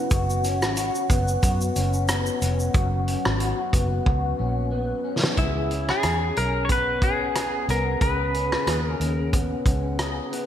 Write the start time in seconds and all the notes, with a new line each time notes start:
Already playing: F#2 B3 C#4 E4 F#4
0.11 F#1 F#4, kick, closed hi-hat, shaker
0.30 shaker
0.44 C#4, closed hi-hat, shaker
0.62 G#1, cross-stick, shaker
0.77 F#4, closed hi-hat, shaker
0.95 shaker
1.10 F#1 B3, kick, closed hi-hat, shaker
1.28 shaker
1.43 F#2 F#4, kick, closed hi-hat, shaker
1.61 shaker
1.76 F#1 C#4, closed hi-hat, shaker
1.93 shaker
2.08 B3, cross-stick, closed hi-hat, shaker
2.26 shaker
2.42 F1 C#4, closed hi-hat, shaker
2.60 shaker
2.74 F#1 F#2 F#4, kick, closed hi-hat
3.07 C#4, closed hi-hat
3.25 G#1, cross-stick
3.40 F#4, closed hi-hat
3.73 F#1 B3, kick, closed hi-hat
4.06 C#2 F#4, kick
4.39 A#1 C#4
4.71 B3
5.04 C#4
5.23 snare
5.37 C#2 E4 G#4, kick, closed hi-hat
5.70 C#4, closed hi-hat
5.89 G#4, cross-stick
6.03 E2 G#4, cross-stick, closed hi-hat
6.36 B1 C#4 A#4, closed hi-hat
6.65 C#5
6.69 B3 B4, kick, closed hi-hat
7.02 C#4 G#4, kick, closed hi-hat
7.35 G#4, cross-stick, closed hi-hat
7.68 C2 B3 A#4, closed hi-hat
8.01 C#2 C#3 G#4 B4, kick, closed hi-hat
8.34 C#4, closed hi-hat
8.52 cross-stick
8.67 D#2 G#4, cross-stick, closed hi-hat
8.85 A#4
9.00 D#2 C#4, closed hi-hat
9.33 B3, kick, closed hi-hat
9.66 C#2 C#4, kick, closed hi-hat
9.99 G#4, cross-stick, closed hi-hat
10.31 B3, closed hi-hat